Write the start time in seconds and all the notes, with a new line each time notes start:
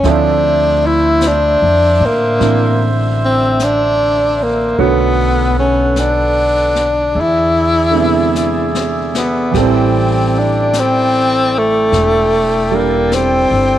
Already playing: C#4
0.03 D2 D3 F3 C4 D4 E4 A4 C5 E5, brush sweep, snare
0.11 D4
0.87 E4
1.21 brush sweep, snare, hi-hat pedal
1.28 D4
1.62 F2
2.01 A2
2.05 A#3
2.39 A1 C4 D4 E4, brush sweep, snare
3.25 C4
3.60 brush sweep, snare, hi-hat pedal
3.64 D4
4.43 A#3
4.77 B1 D3 A3 B3 F#4 A4 B4 C#5 F#5, brush sweep
5.59 C#4
5.96 D4, brush sweep, snare, hi-hat pedal
6.75 snare
7.14 E2 G#4 D5 E5, brush sweep
7.21 E4
7.90 D3 G#3
7.95 C3 B3
8.01 E4
8.35 snare, hi-hat pedal
8.75 snare
9.15 B3, snare
9.51 A1 E3 G3 E4 A4 G5, brush sweep, kick, snare, ride
9.57 C4 A4
9.62 E4
10.39 D4
10.73 brush sweep, snare, hi-hat pedal
10.79 C4
11.58 A3
11.92 E1, brush sweep, snare
12.71 G3 A#3 D4
13.12 C4, brush sweep, snare, hi-hat pedal
13.51 G1